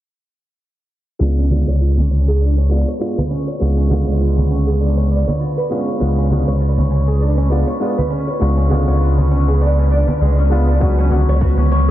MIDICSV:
0, 0, Header, 1, 7, 480
1, 0, Start_track
1, 0, Tempo, 600000
1, 970, Time_signature, 4, 2, 24, 8
1, 9527, End_track
2, 0, Start_track
2, 0, Title_t, "Synth texture"
2, 0, Program_c, 0, 99
2, 956, Note_on_c, 0, 71, 79
2, 9527, Note_off_c, 0, 71, 0
2, 9527, End_track
3, 0, Start_track
3, 0, Title_t, "Oud"
3, 0, Program_c, 1, 24
3, 966, Note_on_c, 1, 61, 68
3, 1091, Note_off_c, 1, 61, 0
3, 1104, Note_on_c, 1, 61, 94
3, 1197, Note_off_c, 1, 61, 0
3, 1207, Note_on_c, 1, 61, 70
3, 1331, Note_off_c, 1, 61, 0
3, 1342, Note_on_c, 1, 73, 89
3, 1437, Note_off_c, 1, 73, 0
3, 1446, Note_on_c, 1, 65, 70
3, 1571, Note_off_c, 1, 65, 0
3, 1582, Note_on_c, 1, 61, 66
3, 1677, Note_off_c, 1, 61, 0
3, 1686, Note_on_c, 1, 61, 81
3, 1818, Note_off_c, 1, 61, 0
3, 1823, Note_on_c, 1, 68, 86
3, 1923, Note_off_c, 1, 68, 0
3, 1925, Note_on_c, 1, 62, 68
3, 2051, Note_off_c, 1, 62, 0
3, 2062, Note_on_c, 1, 61, 92
3, 2162, Note_off_c, 1, 61, 0
3, 2169, Note_on_c, 1, 62, 62
3, 2299, Note_off_c, 1, 62, 0
3, 2305, Note_on_c, 1, 73, 87
3, 2398, Note_off_c, 1, 73, 0
3, 2404, Note_on_c, 1, 65, 75
3, 2530, Note_off_c, 1, 65, 0
3, 2538, Note_on_c, 1, 71, 61
3, 2640, Note_off_c, 1, 71, 0
3, 2641, Note_on_c, 1, 61, 88
3, 2775, Note_off_c, 1, 61, 0
3, 2780, Note_on_c, 1, 73, 66
3, 2878, Note_on_c, 1, 61, 66
3, 2881, Note_off_c, 1, 73, 0
3, 3007, Note_off_c, 1, 61, 0
3, 3015, Note_on_c, 1, 61, 92
3, 3109, Note_off_c, 1, 61, 0
3, 3119, Note_on_c, 1, 61, 67
3, 3247, Note_off_c, 1, 61, 0
3, 3256, Note_on_c, 1, 73, 88
3, 3354, Note_off_c, 1, 73, 0
3, 3360, Note_on_c, 1, 65, 67
3, 3488, Note_off_c, 1, 65, 0
3, 3495, Note_on_c, 1, 61, 63
3, 3591, Note_off_c, 1, 61, 0
3, 3601, Note_on_c, 1, 61, 89
3, 3735, Note_off_c, 1, 61, 0
3, 3735, Note_on_c, 1, 68, 90
3, 3838, Note_off_c, 1, 68, 0
3, 3838, Note_on_c, 1, 62, 71
3, 3967, Note_off_c, 1, 62, 0
3, 3976, Note_on_c, 1, 61, 89
3, 4079, Note_off_c, 1, 61, 0
3, 4084, Note_on_c, 1, 62, 67
3, 4217, Note_off_c, 1, 62, 0
3, 4219, Note_on_c, 1, 73, 85
3, 4315, Note_off_c, 1, 73, 0
3, 4322, Note_on_c, 1, 65, 78
3, 4449, Note_off_c, 1, 65, 0
3, 4459, Note_on_c, 1, 71, 69
3, 4561, Note_off_c, 1, 71, 0
3, 4566, Note_on_c, 1, 61, 86
3, 4698, Note_off_c, 1, 61, 0
3, 4702, Note_on_c, 1, 73, 66
3, 4802, Note_off_c, 1, 73, 0
3, 4807, Note_on_c, 1, 61, 67
3, 4932, Note_off_c, 1, 61, 0
3, 4944, Note_on_c, 1, 61, 94
3, 5039, Note_off_c, 1, 61, 0
3, 5048, Note_on_c, 1, 61, 73
3, 5172, Note_off_c, 1, 61, 0
3, 5180, Note_on_c, 1, 73, 91
3, 5276, Note_off_c, 1, 73, 0
3, 5282, Note_on_c, 1, 65, 67
3, 5409, Note_off_c, 1, 65, 0
3, 5423, Note_on_c, 1, 61, 66
3, 5517, Note_off_c, 1, 61, 0
3, 5525, Note_on_c, 1, 61, 88
3, 5657, Note_off_c, 1, 61, 0
3, 5661, Note_on_c, 1, 68, 91
3, 5761, Note_off_c, 1, 68, 0
3, 5768, Note_on_c, 1, 62, 75
3, 5892, Note_off_c, 1, 62, 0
3, 5898, Note_on_c, 1, 61, 98
3, 6000, Note_off_c, 1, 61, 0
3, 6006, Note_on_c, 1, 62, 70
3, 6138, Note_off_c, 1, 62, 0
3, 6139, Note_on_c, 1, 73, 88
3, 6236, Note_off_c, 1, 73, 0
3, 6242, Note_on_c, 1, 65, 72
3, 6369, Note_off_c, 1, 65, 0
3, 6381, Note_on_c, 1, 71, 63
3, 6480, Note_on_c, 1, 61, 93
3, 6482, Note_off_c, 1, 71, 0
3, 6615, Note_off_c, 1, 61, 0
3, 6620, Note_on_c, 1, 73, 62
3, 6721, Note_off_c, 1, 73, 0
3, 6725, Note_on_c, 1, 61, 76
3, 6848, Note_off_c, 1, 61, 0
3, 6857, Note_on_c, 1, 61, 87
3, 6956, Note_off_c, 1, 61, 0
3, 6965, Note_on_c, 1, 61, 72
3, 7091, Note_off_c, 1, 61, 0
3, 7103, Note_on_c, 1, 73, 90
3, 7198, Note_off_c, 1, 73, 0
3, 7203, Note_on_c, 1, 65, 71
3, 7329, Note_off_c, 1, 65, 0
3, 7343, Note_on_c, 1, 61, 69
3, 7438, Note_off_c, 1, 61, 0
3, 7448, Note_on_c, 1, 61, 85
3, 7579, Note_off_c, 1, 61, 0
3, 7585, Note_on_c, 1, 68, 91
3, 7683, Note_off_c, 1, 68, 0
3, 7689, Note_on_c, 1, 62, 74
3, 7812, Note_off_c, 1, 62, 0
3, 7828, Note_on_c, 1, 61, 92
3, 7923, Note_off_c, 1, 61, 0
3, 7926, Note_on_c, 1, 62, 91
3, 8051, Note_off_c, 1, 62, 0
3, 8066, Note_on_c, 1, 61, 65
3, 8159, Note_off_c, 1, 61, 0
3, 8171, Note_on_c, 1, 56, 91
3, 8300, Note_off_c, 1, 56, 0
3, 8309, Note_on_c, 1, 61, 79
3, 8366, Note_off_c, 1, 61, 0
3, 8413, Note_on_c, 1, 59, 63
3, 8535, Note_off_c, 1, 59, 0
3, 8547, Note_on_c, 1, 62, 66
3, 8605, Note_off_c, 1, 62, 0
3, 8656, Note_on_c, 1, 61, 71
3, 8776, Note_off_c, 1, 61, 0
3, 8787, Note_on_c, 1, 61, 95
3, 8881, Note_off_c, 1, 61, 0
3, 8890, Note_on_c, 1, 61, 70
3, 9013, Note_off_c, 1, 61, 0
3, 9031, Note_on_c, 1, 73, 87
3, 9121, Note_off_c, 1, 73, 0
3, 9129, Note_on_c, 1, 66, 75
3, 9252, Note_off_c, 1, 66, 0
3, 9269, Note_on_c, 1, 61, 67
3, 9360, Note_off_c, 1, 61, 0
3, 9372, Note_on_c, 1, 61, 88
3, 9501, Note_off_c, 1, 61, 0
3, 9527, End_track
4, 0, Start_track
4, 0, Title_t, "Felt piano"
4, 0, Program_c, 2, 0
4, 954, Note_on_c, 2, 56, 72
4, 958, Note_on_c, 2, 59, 65
4, 964, Note_on_c, 2, 62, 64
4, 969, Note_on_c, 2, 65, 81
4, 1177, Note_off_c, 2, 56, 0
4, 1179, Note_off_c, 2, 59, 0
4, 1182, Note_off_c, 2, 62, 0
4, 1185, Note_off_c, 2, 65, 0
4, 1196, Note_on_c, 2, 56, 60
4, 1202, Note_on_c, 2, 59, 57
4, 1204, Note_on_c, 2, 62, 53
4, 1212, Note_on_c, 2, 65, 65
4, 1332, Note_off_c, 2, 56, 0
4, 1336, Note_off_c, 2, 59, 0
4, 1336, Note_off_c, 2, 62, 0
4, 1340, Note_off_c, 2, 65, 0
4, 2153, Note_on_c, 2, 56, 65
4, 2157, Note_on_c, 2, 59, 63
4, 2162, Note_on_c, 2, 62, 65
4, 2169, Note_on_c, 2, 65, 74
4, 2291, Note_off_c, 2, 56, 0
4, 2293, Note_off_c, 2, 59, 0
4, 2295, Note_off_c, 2, 62, 0
4, 2299, Note_off_c, 2, 65, 0
4, 2394, Note_on_c, 2, 56, 76
4, 2401, Note_on_c, 2, 59, 70
4, 2404, Note_on_c, 2, 62, 68
4, 2410, Note_on_c, 2, 65, 81
4, 2531, Note_off_c, 2, 56, 0
4, 2535, Note_off_c, 2, 59, 0
4, 2536, Note_off_c, 2, 62, 0
4, 2539, Note_off_c, 2, 65, 0
4, 2873, Note_on_c, 2, 56, 66
4, 2879, Note_on_c, 2, 59, 58
4, 2886, Note_on_c, 2, 62, 57
4, 2890, Note_on_c, 2, 65, 68
4, 3071, Note_off_c, 2, 56, 0
4, 3074, Note_off_c, 2, 59, 0
4, 3078, Note_off_c, 2, 62, 0
4, 3080, Note_off_c, 2, 65, 0
4, 3105, Note_on_c, 2, 56, 79
4, 3117, Note_on_c, 2, 59, 74
4, 3127, Note_on_c, 2, 50, 74
4, 3140, Note_on_c, 2, 65, 86
4, 4532, Note_off_c, 2, 56, 0
4, 4539, Note_off_c, 2, 59, 0
4, 4544, Note_off_c, 2, 50, 0
4, 4550, Note_off_c, 2, 65, 0
4, 4555, Note_on_c, 2, 56, 66
4, 4561, Note_on_c, 2, 59, 63
4, 4566, Note_on_c, 2, 62, 64
4, 4572, Note_on_c, 2, 65, 77
4, 4777, Note_off_c, 2, 56, 0
4, 4781, Note_off_c, 2, 59, 0
4, 4783, Note_off_c, 2, 62, 0
4, 4786, Note_off_c, 2, 65, 0
4, 4789, Note_on_c, 2, 56, 76
4, 4798, Note_on_c, 2, 59, 67
4, 4801, Note_on_c, 2, 62, 67
4, 4808, Note_on_c, 2, 65, 82
4, 5015, Note_off_c, 2, 56, 0
4, 5019, Note_off_c, 2, 59, 0
4, 5020, Note_off_c, 2, 62, 0
4, 5024, Note_off_c, 2, 65, 0
4, 5039, Note_on_c, 2, 56, 67
4, 5046, Note_on_c, 2, 59, 58
4, 5051, Note_on_c, 2, 62, 55
4, 5055, Note_on_c, 2, 65, 69
4, 5174, Note_off_c, 2, 56, 0
4, 5177, Note_off_c, 2, 59, 0
4, 5180, Note_off_c, 2, 62, 0
4, 5182, Note_off_c, 2, 65, 0
4, 5998, Note_on_c, 2, 56, 69
4, 6006, Note_on_c, 2, 59, 65
4, 6011, Note_on_c, 2, 62, 68
4, 6016, Note_on_c, 2, 65, 73
4, 6133, Note_off_c, 2, 56, 0
4, 6137, Note_off_c, 2, 59, 0
4, 6140, Note_off_c, 2, 62, 0
4, 6143, Note_off_c, 2, 65, 0
4, 6239, Note_on_c, 2, 56, 77
4, 6244, Note_on_c, 2, 59, 71
4, 6250, Note_on_c, 2, 62, 70
4, 6255, Note_on_c, 2, 65, 82
4, 6374, Note_off_c, 2, 56, 0
4, 6376, Note_off_c, 2, 59, 0
4, 6380, Note_off_c, 2, 62, 0
4, 6382, Note_off_c, 2, 65, 0
4, 6715, Note_on_c, 2, 56, 64
4, 6721, Note_on_c, 2, 59, 59
4, 6726, Note_on_c, 2, 62, 61
4, 6731, Note_on_c, 2, 65, 71
4, 6912, Note_off_c, 2, 56, 0
4, 6915, Note_off_c, 2, 59, 0
4, 6918, Note_off_c, 2, 62, 0
4, 6920, Note_off_c, 2, 65, 0
4, 6947, Note_on_c, 2, 56, 82
4, 6958, Note_on_c, 2, 59, 73
4, 6971, Note_on_c, 2, 50, 72
4, 6978, Note_on_c, 2, 65, 86
4, 8373, Note_off_c, 2, 56, 0
4, 8379, Note_off_c, 2, 59, 0
4, 8386, Note_off_c, 2, 50, 0
4, 8389, Note_off_c, 2, 65, 0
4, 8399, Note_on_c, 2, 56, 71
4, 8402, Note_on_c, 2, 59, 70
4, 8409, Note_on_c, 2, 62, 66
4, 8414, Note_on_c, 2, 65, 84
4, 8534, Note_off_c, 2, 56, 0
4, 8536, Note_off_c, 2, 59, 0
4, 8539, Note_off_c, 2, 62, 0
4, 8541, Note_off_c, 2, 65, 0
4, 8636, Note_on_c, 2, 54, 74
4, 8642, Note_on_c, 2, 59, 73
4, 8647, Note_on_c, 2, 62, 69
4, 8653, Note_on_c, 2, 66, 86
4, 8858, Note_off_c, 2, 54, 0
4, 8861, Note_off_c, 2, 59, 0
4, 8863, Note_off_c, 2, 62, 0
4, 8866, Note_off_c, 2, 66, 0
4, 8876, Note_on_c, 2, 54, 61
4, 8882, Note_on_c, 2, 59, 58
4, 8889, Note_on_c, 2, 62, 62
4, 8893, Note_on_c, 2, 66, 65
4, 9012, Note_off_c, 2, 54, 0
4, 9015, Note_off_c, 2, 59, 0
4, 9019, Note_off_c, 2, 62, 0
4, 9021, Note_off_c, 2, 66, 0
4, 9527, End_track
5, 0, Start_track
5, 0, Title_t, "Synth drone"
5, 0, Program_c, 3, 95
5, 8828, Note_on_c, 3, 59, 68
5, 8946, Note_on_c, 3, 54, 68
5, 9527, Note_off_c, 3, 54, 0
5, 9527, Note_off_c, 3, 59, 0
5, 9527, End_track
6, 0, Start_track
6, 0, Title_t, "Analog synth bass"
6, 0, Program_c, 4, 38
6, 963, Note_on_c, 4, 37, 94
6, 1309, Note_off_c, 4, 37, 0
6, 1344, Note_on_c, 4, 37, 83
6, 2271, Note_off_c, 4, 37, 0
6, 2889, Note_on_c, 4, 37, 88
6, 3232, Note_off_c, 4, 37, 0
6, 3262, Note_on_c, 4, 37, 83
6, 4190, Note_off_c, 4, 37, 0
6, 4807, Note_on_c, 4, 37, 94
6, 5152, Note_off_c, 4, 37, 0
6, 5182, Note_on_c, 4, 37, 82
6, 6111, Note_off_c, 4, 37, 0
6, 6729, Note_on_c, 4, 37, 96
6, 7072, Note_off_c, 4, 37, 0
6, 7105, Note_on_c, 4, 37, 79
6, 8032, Note_off_c, 4, 37, 0
6, 8169, Note_on_c, 4, 37, 91
6, 8624, Note_off_c, 4, 37, 0
6, 8649, Note_on_c, 4, 37, 88
6, 8992, Note_off_c, 4, 37, 0
6, 9025, Note_on_c, 4, 37, 87
6, 9527, Note_off_c, 4, 37, 0
6, 9527, End_track
7, 0, Start_track
7, 0, Title_t, "Drums"
7, 1206, Note_on_c, 9, 64, 71
7, 1286, Note_off_c, 9, 64, 0
7, 1583, Note_on_c, 9, 64, 69
7, 1663, Note_off_c, 9, 64, 0
7, 2546, Note_on_c, 9, 64, 71
7, 2626, Note_off_c, 9, 64, 0
7, 3126, Note_on_c, 9, 64, 62
7, 3206, Note_off_c, 9, 64, 0
7, 3506, Note_on_c, 9, 64, 71
7, 3586, Note_off_c, 9, 64, 0
7, 4227, Note_on_c, 9, 64, 68
7, 4307, Note_off_c, 9, 64, 0
7, 5049, Note_on_c, 9, 64, 62
7, 5129, Note_off_c, 9, 64, 0
7, 5425, Note_on_c, 9, 64, 67
7, 5505, Note_off_c, 9, 64, 0
7, 6389, Note_on_c, 9, 64, 72
7, 6469, Note_off_c, 9, 64, 0
7, 6971, Note_on_c, 9, 64, 62
7, 7051, Note_off_c, 9, 64, 0
7, 7347, Note_on_c, 9, 64, 69
7, 7427, Note_off_c, 9, 64, 0
7, 8064, Note_on_c, 9, 64, 66
7, 8144, Note_off_c, 9, 64, 0
7, 8649, Note_on_c, 9, 82, 40
7, 8650, Note_on_c, 9, 36, 92
7, 8729, Note_off_c, 9, 82, 0
7, 8730, Note_off_c, 9, 36, 0
7, 8789, Note_on_c, 9, 82, 20
7, 8869, Note_off_c, 9, 82, 0
7, 8885, Note_on_c, 9, 64, 68
7, 8889, Note_on_c, 9, 82, 67
7, 8965, Note_off_c, 9, 64, 0
7, 8969, Note_off_c, 9, 82, 0
7, 9027, Note_on_c, 9, 82, 28
7, 9107, Note_off_c, 9, 82, 0
7, 9128, Note_on_c, 9, 82, 38
7, 9130, Note_on_c, 9, 36, 89
7, 9208, Note_off_c, 9, 82, 0
7, 9210, Note_off_c, 9, 36, 0
7, 9260, Note_on_c, 9, 64, 71
7, 9264, Note_on_c, 9, 82, 20
7, 9340, Note_off_c, 9, 64, 0
7, 9344, Note_off_c, 9, 82, 0
7, 9368, Note_on_c, 9, 82, 74
7, 9448, Note_off_c, 9, 82, 0
7, 9527, End_track
0, 0, End_of_file